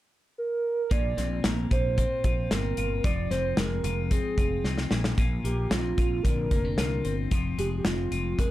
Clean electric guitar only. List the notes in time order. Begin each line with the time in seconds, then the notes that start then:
0.91 A#2 F4
1.17 C4
1.44 A#3
1.71 F4
1.98 C4
2.25 F4
2.51 C4
2.78 F4
3.04 F3 F4
3.31 C4
3.58 G#3
3.84 F4
4.11 C4
4.38 F4
4.65 C4
4.91 A#2
5.18 A#2 F4
5.45 A#3
5.71 C4
5.98 F4
6.25 D3
6.52 A#3
6.65 C4
6.78 F4
7.05 C4
7.31 F3 F4
7.58 G#3
7.85 C4
8.12 F4
8.39 G#3